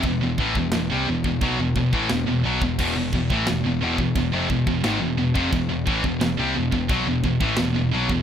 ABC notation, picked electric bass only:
X:1
M:4/4
L:1/16
Q:1/4=87
K:none
V:1 name="Picked electric bass" clef=bass
E,,, E,,, A,,, E,,, E,,, C,, E,,, E,,, B,,, E,,, E,,, A,,, E,,, E,,, B,,, E,,, | E,,, E,,, E,,, A,,, E,,, E,,, E,,, E,,, E,,, F,,, E,,, E,,, ^G,,, E,,, E,,, F,,, | E,,, E,,, A,,, E,,, E,,, C,, E,,, E,,, B,,, E,,, E,,, A,,, E,,, E,,, B,,, E,,, |]